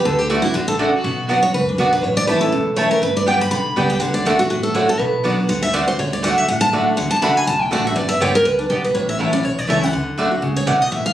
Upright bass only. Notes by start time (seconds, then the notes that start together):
0.06 D2
0.55 A1
1.04 B1
1.54 C#2
1.78 B1
2.03 A1
2.53 E1
3.02 G1
3.51 B1
3.76 C#2
4.01 D2
4.50 A1
4.99 B1
5.49 D2
5.98 D2
6.48 A1
6.98 D2
7.23 C#2
7.47 B1
7.72 A1
7.97 G1
8.21 D2
8.45 C#2
8.70 B1
8.95 A1
9.44 B1
9.69 C#2
9.93 D2
10.42 C#2
10.67 B1
10.92 A1